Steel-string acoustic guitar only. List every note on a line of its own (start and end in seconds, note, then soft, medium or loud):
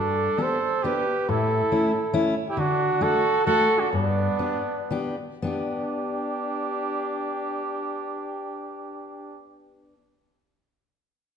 0.00 0.27 G2 medium
0.38 0.59 B3 medium
0.38 0.59 D4 medium
0.38 0.59 G4 medium
0.84 1.04 B3 medium
0.84 1.04 D4 medium
0.84 1.04 G4 medium
1.29 1.60 A2 medium
1.72 1.91 A3 medium
1.72 1.91 C#4 medium
1.72 1.91 E4 medium
2.13 2.34 A3 medium
2.13 2.34 C#4 medium
2.13 2.34 E4 loud
2.57 2.90 D3 medium
3.01 3.21 A3 medium
3.01 3.21 D4 medium
3.01 3.21 F#4 medium
3.46 3.67 A3 medium
3.46 3.66 D4 medium
3.46 3.67 F#4 medium
3.93 4.27 G2 medium
4.39 4.61 B3 medium
4.39 4.62 D4 medium
4.39 4.62 G4 medium
4.91 5.14 B3 medium
4.91 5.15 D4 medium
4.91 5.15 G4 medium
5.42 9.92 B3 medium
5.42 9.94 D4 medium
5.47 9.97 G4 medium